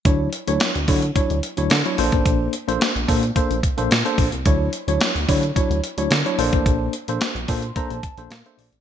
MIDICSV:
0, 0, Header, 1, 4, 480
1, 0, Start_track
1, 0, Tempo, 550459
1, 49, Time_signature, 4, 2, 24, 8
1, 7680, End_track
2, 0, Start_track
2, 0, Title_t, "Tine electric piano"
2, 0, Program_c, 0, 4
2, 44, Note_on_c, 0, 54, 73
2, 47, Note_on_c, 0, 62, 72
2, 49, Note_on_c, 0, 64, 72
2, 53, Note_on_c, 0, 73, 81
2, 248, Note_off_c, 0, 54, 0
2, 250, Note_off_c, 0, 62, 0
2, 250, Note_off_c, 0, 64, 0
2, 253, Note_off_c, 0, 73, 0
2, 414, Note_on_c, 0, 54, 81
2, 415, Note_on_c, 0, 62, 68
2, 417, Note_on_c, 0, 64, 70
2, 420, Note_on_c, 0, 73, 86
2, 612, Note_off_c, 0, 54, 0
2, 612, Note_off_c, 0, 62, 0
2, 613, Note_off_c, 0, 64, 0
2, 615, Note_off_c, 0, 73, 0
2, 768, Note_on_c, 0, 54, 80
2, 769, Note_on_c, 0, 62, 74
2, 772, Note_on_c, 0, 64, 76
2, 776, Note_on_c, 0, 73, 85
2, 907, Note_off_c, 0, 54, 0
2, 908, Note_off_c, 0, 62, 0
2, 910, Note_off_c, 0, 64, 0
2, 912, Note_off_c, 0, 73, 0
2, 1005, Note_on_c, 0, 54, 74
2, 1008, Note_on_c, 0, 62, 71
2, 1010, Note_on_c, 0, 64, 70
2, 1013, Note_on_c, 0, 73, 86
2, 1208, Note_off_c, 0, 54, 0
2, 1210, Note_off_c, 0, 62, 0
2, 1211, Note_off_c, 0, 64, 0
2, 1213, Note_off_c, 0, 73, 0
2, 1371, Note_on_c, 0, 54, 85
2, 1374, Note_on_c, 0, 62, 71
2, 1377, Note_on_c, 0, 64, 73
2, 1379, Note_on_c, 0, 73, 88
2, 1500, Note_off_c, 0, 54, 0
2, 1501, Note_off_c, 0, 62, 0
2, 1503, Note_off_c, 0, 64, 0
2, 1504, Note_off_c, 0, 73, 0
2, 1614, Note_on_c, 0, 54, 81
2, 1616, Note_on_c, 0, 62, 70
2, 1619, Note_on_c, 0, 64, 79
2, 1619, Note_on_c, 0, 73, 90
2, 1717, Note_off_c, 0, 62, 0
2, 1726, Note_on_c, 0, 58, 86
2, 1728, Note_off_c, 0, 54, 0
2, 1728, Note_on_c, 0, 62, 79
2, 1730, Note_off_c, 0, 64, 0
2, 1730, Note_off_c, 0, 73, 0
2, 1731, Note_on_c, 0, 69, 74
2, 1733, Note_on_c, 0, 72, 96
2, 2207, Note_off_c, 0, 58, 0
2, 2208, Note_off_c, 0, 62, 0
2, 2210, Note_off_c, 0, 69, 0
2, 2211, Note_off_c, 0, 72, 0
2, 2334, Note_on_c, 0, 58, 81
2, 2335, Note_on_c, 0, 62, 78
2, 2339, Note_on_c, 0, 69, 71
2, 2341, Note_on_c, 0, 72, 92
2, 2532, Note_off_c, 0, 58, 0
2, 2532, Note_off_c, 0, 62, 0
2, 2534, Note_off_c, 0, 69, 0
2, 2535, Note_off_c, 0, 72, 0
2, 2687, Note_on_c, 0, 58, 84
2, 2688, Note_on_c, 0, 62, 73
2, 2690, Note_on_c, 0, 69, 76
2, 2692, Note_on_c, 0, 72, 87
2, 2827, Note_off_c, 0, 58, 0
2, 2828, Note_off_c, 0, 62, 0
2, 2829, Note_off_c, 0, 69, 0
2, 2829, Note_off_c, 0, 72, 0
2, 2927, Note_on_c, 0, 58, 85
2, 2929, Note_on_c, 0, 62, 74
2, 2933, Note_on_c, 0, 69, 70
2, 2935, Note_on_c, 0, 72, 87
2, 3129, Note_off_c, 0, 58, 0
2, 3131, Note_off_c, 0, 62, 0
2, 3132, Note_off_c, 0, 69, 0
2, 3134, Note_off_c, 0, 72, 0
2, 3292, Note_on_c, 0, 58, 87
2, 3294, Note_on_c, 0, 62, 76
2, 3296, Note_on_c, 0, 69, 74
2, 3299, Note_on_c, 0, 72, 85
2, 3420, Note_off_c, 0, 58, 0
2, 3421, Note_off_c, 0, 62, 0
2, 3423, Note_off_c, 0, 69, 0
2, 3424, Note_off_c, 0, 72, 0
2, 3530, Note_on_c, 0, 58, 78
2, 3533, Note_on_c, 0, 62, 71
2, 3534, Note_on_c, 0, 69, 78
2, 3538, Note_on_c, 0, 72, 88
2, 3730, Note_off_c, 0, 58, 0
2, 3731, Note_off_c, 0, 62, 0
2, 3732, Note_off_c, 0, 69, 0
2, 3733, Note_off_c, 0, 72, 0
2, 3884, Note_on_c, 0, 54, 76
2, 3885, Note_on_c, 0, 62, 73
2, 3891, Note_on_c, 0, 64, 77
2, 3892, Note_on_c, 0, 73, 88
2, 4088, Note_off_c, 0, 54, 0
2, 4089, Note_off_c, 0, 62, 0
2, 4091, Note_off_c, 0, 64, 0
2, 4092, Note_off_c, 0, 73, 0
2, 4254, Note_on_c, 0, 54, 83
2, 4257, Note_on_c, 0, 62, 72
2, 4259, Note_on_c, 0, 64, 71
2, 4260, Note_on_c, 0, 73, 89
2, 4451, Note_off_c, 0, 54, 0
2, 4453, Note_off_c, 0, 62, 0
2, 4454, Note_off_c, 0, 64, 0
2, 4455, Note_off_c, 0, 73, 0
2, 4605, Note_on_c, 0, 54, 86
2, 4608, Note_on_c, 0, 62, 72
2, 4610, Note_on_c, 0, 64, 77
2, 4613, Note_on_c, 0, 73, 88
2, 4746, Note_off_c, 0, 54, 0
2, 4748, Note_off_c, 0, 62, 0
2, 4748, Note_off_c, 0, 64, 0
2, 4750, Note_off_c, 0, 73, 0
2, 4845, Note_on_c, 0, 54, 86
2, 4850, Note_on_c, 0, 62, 70
2, 4850, Note_on_c, 0, 64, 73
2, 4853, Note_on_c, 0, 73, 88
2, 5048, Note_off_c, 0, 54, 0
2, 5051, Note_off_c, 0, 62, 0
2, 5051, Note_off_c, 0, 64, 0
2, 5053, Note_off_c, 0, 73, 0
2, 5212, Note_on_c, 0, 62, 72
2, 5213, Note_on_c, 0, 54, 76
2, 5216, Note_on_c, 0, 64, 76
2, 5218, Note_on_c, 0, 73, 90
2, 5340, Note_off_c, 0, 62, 0
2, 5341, Note_off_c, 0, 54, 0
2, 5342, Note_off_c, 0, 64, 0
2, 5343, Note_off_c, 0, 73, 0
2, 5452, Note_on_c, 0, 54, 79
2, 5453, Note_on_c, 0, 62, 75
2, 5458, Note_on_c, 0, 64, 74
2, 5459, Note_on_c, 0, 73, 89
2, 5556, Note_off_c, 0, 62, 0
2, 5565, Note_on_c, 0, 58, 89
2, 5566, Note_off_c, 0, 54, 0
2, 5567, Note_on_c, 0, 62, 78
2, 5569, Note_on_c, 0, 69, 75
2, 5570, Note_off_c, 0, 64, 0
2, 5570, Note_off_c, 0, 73, 0
2, 5573, Note_on_c, 0, 72, 97
2, 6047, Note_off_c, 0, 58, 0
2, 6048, Note_off_c, 0, 62, 0
2, 6049, Note_off_c, 0, 69, 0
2, 6051, Note_off_c, 0, 72, 0
2, 6177, Note_on_c, 0, 58, 80
2, 6179, Note_on_c, 0, 62, 74
2, 6181, Note_on_c, 0, 69, 75
2, 6184, Note_on_c, 0, 72, 87
2, 6373, Note_off_c, 0, 58, 0
2, 6374, Note_off_c, 0, 62, 0
2, 6375, Note_off_c, 0, 69, 0
2, 6377, Note_off_c, 0, 72, 0
2, 6525, Note_on_c, 0, 58, 85
2, 6528, Note_on_c, 0, 62, 69
2, 6529, Note_on_c, 0, 84, 71
2, 6530, Note_on_c, 0, 69, 76
2, 6534, Note_on_c, 0, 72, 92
2, 6666, Note_off_c, 0, 58, 0
2, 6667, Note_off_c, 0, 62, 0
2, 6669, Note_off_c, 0, 69, 0
2, 6671, Note_off_c, 0, 72, 0
2, 6752, Note_off_c, 0, 84, 0
2, 6765, Note_on_c, 0, 58, 78
2, 6768, Note_on_c, 0, 62, 77
2, 6771, Note_on_c, 0, 69, 72
2, 6771, Note_on_c, 0, 82, 70
2, 6772, Note_on_c, 0, 72, 90
2, 6888, Note_off_c, 0, 82, 0
2, 6897, Note_on_c, 0, 81, 72
2, 6969, Note_off_c, 0, 58, 0
2, 6970, Note_off_c, 0, 62, 0
2, 6972, Note_off_c, 0, 69, 0
2, 6972, Note_off_c, 0, 72, 0
2, 7001, Note_off_c, 0, 81, 0
2, 7010, Note_on_c, 0, 81, 67
2, 7132, Note_on_c, 0, 58, 77
2, 7134, Note_on_c, 0, 62, 71
2, 7136, Note_on_c, 0, 69, 71
2, 7137, Note_on_c, 0, 72, 91
2, 7233, Note_off_c, 0, 81, 0
2, 7251, Note_on_c, 0, 77, 63
2, 7260, Note_off_c, 0, 58, 0
2, 7261, Note_off_c, 0, 62, 0
2, 7262, Note_off_c, 0, 69, 0
2, 7263, Note_off_c, 0, 72, 0
2, 7368, Note_off_c, 0, 77, 0
2, 7375, Note_on_c, 0, 58, 83
2, 7376, Note_on_c, 0, 62, 69
2, 7376, Note_on_c, 0, 76, 65
2, 7378, Note_on_c, 0, 69, 73
2, 7379, Note_on_c, 0, 72, 91
2, 7481, Note_off_c, 0, 76, 0
2, 7572, Note_off_c, 0, 58, 0
2, 7573, Note_off_c, 0, 62, 0
2, 7574, Note_off_c, 0, 69, 0
2, 7574, Note_off_c, 0, 72, 0
2, 7680, End_track
3, 0, Start_track
3, 0, Title_t, "Analog synth bass"
3, 0, Program_c, 1, 38
3, 46, Note_on_c, 1, 38, 116
3, 247, Note_off_c, 1, 38, 0
3, 419, Note_on_c, 1, 38, 98
3, 511, Note_off_c, 1, 38, 0
3, 659, Note_on_c, 1, 38, 90
3, 751, Note_off_c, 1, 38, 0
3, 767, Note_on_c, 1, 50, 98
3, 967, Note_off_c, 1, 50, 0
3, 1138, Note_on_c, 1, 38, 90
3, 1231, Note_off_c, 1, 38, 0
3, 1377, Note_on_c, 1, 38, 92
3, 1470, Note_off_c, 1, 38, 0
3, 1490, Note_on_c, 1, 50, 106
3, 1595, Note_off_c, 1, 50, 0
3, 1730, Note_on_c, 1, 34, 106
3, 1835, Note_off_c, 1, 34, 0
3, 1854, Note_on_c, 1, 33, 83
3, 1948, Note_off_c, 1, 33, 0
3, 1968, Note_on_c, 1, 34, 108
3, 2168, Note_off_c, 1, 34, 0
3, 2337, Note_on_c, 1, 34, 97
3, 2430, Note_off_c, 1, 34, 0
3, 2577, Note_on_c, 1, 34, 104
3, 2670, Note_off_c, 1, 34, 0
3, 2691, Note_on_c, 1, 46, 99
3, 2889, Note_off_c, 1, 46, 0
3, 3058, Note_on_c, 1, 34, 90
3, 3151, Note_off_c, 1, 34, 0
3, 3299, Note_on_c, 1, 34, 87
3, 3391, Note_off_c, 1, 34, 0
3, 3410, Note_on_c, 1, 46, 104
3, 3515, Note_off_c, 1, 46, 0
3, 3648, Note_on_c, 1, 34, 96
3, 3754, Note_off_c, 1, 34, 0
3, 3777, Note_on_c, 1, 36, 95
3, 3870, Note_off_c, 1, 36, 0
3, 3890, Note_on_c, 1, 38, 119
3, 4089, Note_off_c, 1, 38, 0
3, 4252, Note_on_c, 1, 38, 96
3, 4347, Note_off_c, 1, 38, 0
3, 4492, Note_on_c, 1, 38, 94
3, 4587, Note_off_c, 1, 38, 0
3, 4611, Note_on_c, 1, 50, 101
3, 4809, Note_off_c, 1, 50, 0
3, 4972, Note_on_c, 1, 38, 88
3, 5067, Note_off_c, 1, 38, 0
3, 5211, Note_on_c, 1, 38, 86
3, 5307, Note_off_c, 1, 38, 0
3, 5327, Note_on_c, 1, 50, 108
3, 5433, Note_off_c, 1, 50, 0
3, 5567, Note_on_c, 1, 34, 105
3, 5673, Note_off_c, 1, 34, 0
3, 5696, Note_on_c, 1, 33, 81
3, 5789, Note_off_c, 1, 33, 0
3, 5809, Note_on_c, 1, 34, 110
3, 6008, Note_off_c, 1, 34, 0
3, 6175, Note_on_c, 1, 34, 101
3, 6269, Note_off_c, 1, 34, 0
3, 6408, Note_on_c, 1, 34, 108
3, 6505, Note_off_c, 1, 34, 0
3, 6528, Note_on_c, 1, 46, 95
3, 6727, Note_off_c, 1, 46, 0
3, 6891, Note_on_c, 1, 34, 99
3, 6986, Note_off_c, 1, 34, 0
3, 7129, Note_on_c, 1, 34, 97
3, 7225, Note_off_c, 1, 34, 0
3, 7241, Note_on_c, 1, 46, 105
3, 7350, Note_off_c, 1, 46, 0
3, 7479, Note_on_c, 1, 34, 89
3, 7589, Note_off_c, 1, 34, 0
3, 7608, Note_on_c, 1, 33, 87
3, 7680, Note_off_c, 1, 33, 0
3, 7680, End_track
4, 0, Start_track
4, 0, Title_t, "Drums"
4, 45, Note_on_c, 9, 42, 90
4, 46, Note_on_c, 9, 36, 110
4, 133, Note_off_c, 9, 36, 0
4, 133, Note_off_c, 9, 42, 0
4, 284, Note_on_c, 9, 42, 73
4, 371, Note_off_c, 9, 42, 0
4, 415, Note_on_c, 9, 42, 48
4, 502, Note_off_c, 9, 42, 0
4, 525, Note_on_c, 9, 42, 86
4, 531, Note_on_c, 9, 38, 113
4, 612, Note_off_c, 9, 42, 0
4, 619, Note_off_c, 9, 38, 0
4, 658, Note_on_c, 9, 42, 35
4, 745, Note_off_c, 9, 42, 0
4, 766, Note_on_c, 9, 46, 72
4, 768, Note_on_c, 9, 36, 93
4, 854, Note_off_c, 9, 46, 0
4, 855, Note_off_c, 9, 36, 0
4, 893, Note_on_c, 9, 42, 38
4, 980, Note_off_c, 9, 42, 0
4, 1008, Note_on_c, 9, 36, 101
4, 1009, Note_on_c, 9, 42, 84
4, 1095, Note_off_c, 9, 36, 0
4, 1096, Note_off_c, 9, 42, 0
4, 1135, Note_on_c, 9, 42, 32
4, 1222, Note_off_c, 9, 42, 0
4, 1248, Note_on_c, 9, 42, 80
4, 1335, Note_off_c, 9, 42, 0
4, 1371, Note_on_c, 9, 42, 42
4, 1458, Note_off_c, 9, 42, 0
4, 1483, Note_on_c, 9, 42, 76
4, 1493, Note_on_c, 9, 38, 118
4, 1570, Note_off_c, 9, 42, 0
4, 1580, Note_off_c, 9, 38, 0
4, 1617, Note_on_c, 9, 42, 33
4, 1704, Note_off_c, 9, 42, 0
4, 1728, Note_on_c, 9, 46, 74
4, 1815, Note_off_c, 9, 46, 0
4, 1850, Note_on_c, 9, 42, 44
4, 1853, Note_on_c, 9, 36, 86
4, 1937, Note_off_c, 9, 42, 0
4, 1940, Note_off_c, 9, 36, 0
4, 1967, Note_on_c, 9, 36, 108
4, 1968, Note_on_c, 9, 42, 87
4, 2054, Note_off_c, 9, 36, 0
4, 2055, Note_off_c, 9, 42, 0
4, 2206, Note_on_c, 9, 42, 72
4, 2293, Note_off_c, 9, 42, 0
4, 2342, Note_on_c, 9, 42, 45
4, 2429, Note_off_c, 9, 42, 0
4, 2452, Note_on_c, 9, 42, 91
4, 2459, Note_on_c, 9, 38, 118
4, 2539, Note_off_c, 9, 42, 0
4, 2546, Note_off_c, 9, 38, 0
4, 2583, Note_on_c, 9, 42, 33
4, 2670, Note_off_c, 9, 42, 0
4, 2690, Note_on_c, 9, 36, 91
4, 2693, Note_on_c, 9, 46, 73
4, 2777, Note_off_c, 9, 36, 0
4, 2780, Note_off_c, 9, 46, 0
4, 2816, Note_on_c, 9, 42, 38
4, 2903, Note_off_c, 9, 42, 0
4, 2929, Note_on_c, 9, 36, 104
4, 2929, Note_on_c, 9, 42, 89
4, 3016, Note_off_c, 9, 36, 0
4, 3016, Note_off_c, 9, 42, 0
4, 3058, Note_on_c, 9, 42, 36
4, 3145, Note_off_c, 9, 42, 0
4, 3168, Note_on_c, 9, 36, 90
4, 3170, Note_on_c, 9, 42, 82
4, 3255, Note_off_c, 9, 36, 0
4, 3257, Note_off_c, 9, 42, 0
4, 3294, Note_on_c, 9, 42, 44
4, 3381, Note_off_c, 9, 42, 0
4, 3410, Note_on_c, 9, 42, 71
4, 3419, Note_on_c, 9, 38, 114
4, 3497, Note_off_c, 9, 42, 0
4, 3507, Note_off_c, 9, 38, 0
4, 3538, Note_on_c, 9, 42, 38
4, 3626, Note_off_c, 9, 42, 0
4, 3646, Note_on_c, 9, 36, 101
4, 3647, Note_on_c, 9, 46, 73
4, 3733, Note_off_c, 9, 36, 0
4, 3734, Note_off_c, 9, 46, 0
4, 3769, Note_on_c, 9, 42, 44
4, 3857, Note_off_c, 9, 42, 0
4, 3885, Note_on_c, 9, 42, 91
4, 3887, Note_on_c, 9, 36, 116
4, 3972, Note_off_c, 9, 42, 0
4, 3974, Note_off_c, 9, 36, 0
4, 4123, Note_on_c, 9, 42, 68
4, 4210, Note_off_c, 9, 42, 0
4, 4256, Note_on_c, 9, 42, 48
4, 4343, Note_off_c, 9, 42, 0
4, 4365, Note_on_c, 9, 42, 92
4, 4372, Note_on_c, 9, 38, 121
4, 4452, Note_off_c, 9, 42, 0
4, 4459, Note_off_c, 9, 38, 0
4, 4498, Note_on_c, 9, 42, 33
4, 4585, Note_off_c, 9, 42, 0
4, 4609, Note_on_c, 9, 36, 85
4, 4610, Note_on_c, 9, 46, 78
4, 4696, Note_off_c, 9, 36, 0
4, 4697, Note_off_c, 9, 46, 0
4, 4736, Note_on_c, 9, 42, 39
4, 4823, Note_off_c, 9, 42, 0
4, 4849, Note_on_c, 9, 36, 93
4, 4851, Note_on_c, 9, 42, 80
4, 4936, Note_off_c, 9, 36, 0
4, 4938, Note_off_c, 9, 42, 0
4, 4978, Note_on_c, 9, 42, 34
4, 5065, Note_off_c, 9, 42, 0
4, 5089, Note_on_c, 9, 42, 77
4, 5176, Note_off_c, 9, 42, 0
4, 5212, Note_on_c, 9, 42, 45
4, 5299, Note_off_c, 9, 42, 0
4, 5325, Note_on_c, 9, 42, 74
4, 5334, Note_on_c, 9, 38, 109
4, 5412, Note_off_c, 9, 42, 0
4, 5422, Note_off_c, 9, 38, 0
4, 5460, Note_on_c, 9, 42, 34
4, 5547, Note_off_c, 9, 42, 0
4, 5569, Note_on_c, 9, 46, 71
4, 5656, Note_off_c, 9, 46, 0
4, 5691, Note_on_c, 9, 42, 45
4, 5693, Note_on_c, 9, 36, 92
4, 5779, Note_off_c, 9, 42, 0
4, 5780, Note_off_c, 9, 36, 0
4, 5807, Note_on_c, 9, 36, 114
4, 5808, Note_on_c, 9, 42, 86
4, 5894, Note_off_c, 9, 36, 0
4, 5896, Note_off_c, 9, 42, 0
4, 6044, Note_on_c, 9, 42, 77
4, 6131, Note_off_c, 9, 42, 0
4, 6175, Note_on_c, 9, 42, 49
4, 6262, Note_off_c, 9, 42, 0
4, 6285, Note_on_c, 9, 42, 89
4, 6292, Note_on_c, 9, 38, 108
4, 6373, Note_off_c, 9, 42, 0
4, 6379, Note_off_c, 9, 38, 0
4, 6417, Note_on_c, 9, 42, 31
4, 6505, Note_off_c, 9, 42, 0
4, 6525, Note_on_c, 9, 46, 78
4, 6527, Note_on_c, 9, 36, 95
4, 6612, Note_off_c, 9, 46, 0
4, 6614, Note_off_c, 9, 36, 0
4, 6649, Note_on_c, 9, 42, 38
4, 6736, Note_off_c, 9, 42, 0
4, 6765, Note_on_c, 9, 42, 77
4, 6766, Note_on_c, 9, 36, 98
4, 6853, Note_off_c, 9, 36, 0
4, 6853, Note_off_c, 9, 42, 0
4, 6893, Note_on_c, 9, 42, 33
4, 6980, Note_off_c, 9, 42, 0
4, 7004, Note_on_c, 9, 42, 80
4, 7005, Note_on_c, 9, 36, 95
4, 7091, Note_off_c, 9, 42, 0
4, 7092, Note_off_c, 9, 36, 0
4, 7129, Note_on_c, 9, 42, 45
4, 7216, Note_off_c, 9, 42, 0
4, 7242, Note_on_c, 9, 42, 72
4, 7252, Note_on_c, 9, 38, 110
4, 7330, Note_off_c, 9, 42, 0
4, 7339, Note_off_c, 9, 38, 0
4, 7375, Note_on_c, 9, 42, 37
4, 7462, Note_off_c, 9, 42, 0
4, 7487, Note_on_c, 9, 46, 70
4, 7574, Note_off_c, 9, 46, 0
4, 7609, Note_on_c, 9, 42, 44
4, 7680, Note_off_c, 9, 42, 0
4, 7680, End_track
0, 0, End_of_file